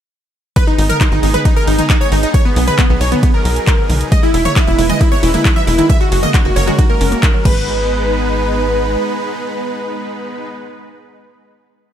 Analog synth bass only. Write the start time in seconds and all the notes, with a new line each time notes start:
0.79 G#1
1.12 G#1
1.23 G#1
1.67 G#1
2.12 G#1
2.56 B1
2.90 B1
3.01 B1
3.45 B1
3.90 B1
4.34 E1
4.67 E1
4.79 E1
5.23 E1
5.67 E1
6.12 F#1
6.45 F#1
6.56 F#1
7.01 F#1
7.45 G#1